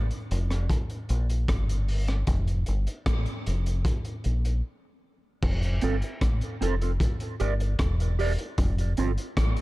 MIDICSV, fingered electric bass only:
0, 0, Header, 1, 2, 480
1, 0, Start_track
1, 0, Tempo, 788436
1, 1384, Time_signature, 4, 2, 24, 8
1, 5852, End_track
2, 0, Start_track
2, 0, Title_t, "Fingered electric bass"
2, 0, Program_c, 0, 33
2, 191, Note_on_c, 0, 29, 103
2, 404, Note_off_c, 0, 29, 0
2, 670, Note_on_c, 0, 34, 96
2, 883, Note_off_c, 0, 34, 0
2, 905, Note_on_c, 0, 31, 83
2, 1361, Note_off_c, 0, 31, 0
2, 1385, Note_on_c, 0, 29, 101
2, 1601, Note_off_c, 0, 29, 0
2, 1631, Note_on_c, 0, 31, 86
2, 1740, Note_off_c, 0, 31, 0
2, 1866, Note_on_c, 0, 33, 82
2, 1977, Note_off_c, 0, 33, 0
2, 2112, Note_on_c, 0, 29, 94
2, 2325, Note_off_c, 0, 29, 0
2, 2591, Note_on_c, 0, 34, 78
2, 2804, Note_off_c, 0, 34, 0
2, 3305, Note_on_c, 0, 29, 105
2, 3521, Note_off_c, 0, 29, 0
2, 3550, Note_on_c, 0, 31, 91
2, 3660, Note_off_c, 0, 31, 0
2, 3786, Note_on_c, 0, 33, 85
2, 3897, Note_off_c, 0, 33, 0
2, 4029, Note_on_c, 0, 29, 86
2, 4243, Note_off_c, 0, 29, 0
2, 4511, Note_on_c, 0, 31, 98
2, 4724, Note_off_c, 0, 31, 0
2, 4745, Note_on_c, 0, 28, 86
2, 5084, Note_off_c, 0, 28, 0
2, 5227, Note_on_c, 0, 29, 107
2, 5442, Note_off_c, 0, 29, 0
2, 5468, Note_on_c, 0, 31, 89
2, 5578, Note_off_c, 0, 31, 0
2, 5706, Note_on_c, 0, 33, 97
2, 5817, Note_off_c, 0, 33, 0
2, 5852, End_track
0, 0, End_of_file